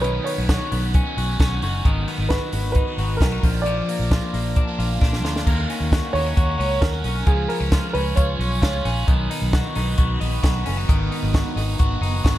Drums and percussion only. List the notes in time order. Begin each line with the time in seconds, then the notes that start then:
0.04 closed hi-hat
0.27 open hi-hat
0.49 kick, snare, closed hi-hat
0.72 open hi-hat
0.94 kick, closed hi-hat
1.18 open hi-hat
1.40 kick, snare, closed hi-hat
1.62 open hi-hat
1.85 kick, closed hi-hat
2.08 open hi-hat
2.30 kick, snare, closed hi-hat
2.52 open hi-hat
2.75 kick, closed hi-hat
2.98 open hi-hat
3.21 kick, snare, closed hi-hat
3.43 kick, open hi-hat
3.66 closed hi-hat
3.89 open hi-hat
4.11 kick, snare, closed hi-hat
4.34 open hi-hat
4.56 kick, closed hi-hat
4.80 open hi-hat
5.02 kick, snare
5.13 snare
5.25 snare
5.36 snare
5.47 kick, crash
5.70 open hi-hat
5.92 kick, snare, closed hi-hat
6.15 open hi-hat
6.37 kick, closed hi-hat
6.60 open hi-hat
6.82 kick, snare, closed hi-hat
7.04 open hi-hat
7.27 kick, closed hi-hat
7.50 open hi-hat
7.72 kick, snare, closed hi-hat
7.95 open hi-hat
8.17 kick, closed hi-hat
8.41 open hi-hat
8.62 kick, snare, closed hi-hat
8.85 open hi-hat
9.08 kick, closed hi-hat
9.31 open hi-hat
9.53 kick, snare, closed hi-hat
9.75 open hi-hat
9.98 kick, closed hi-hat
10.21 open hi-hat
10.44 kick, snare, closed hi-hat
10.66 open hi-hat
10.89 kick, closed hi-hat
11.12 open hi-hat
11.34 kick, snare, closed hi-hat
11.57 open hi-hat
11.79 kick, closed hi-hat
12.03 open hi-hat
12.25 kick, snare, closed hi-hat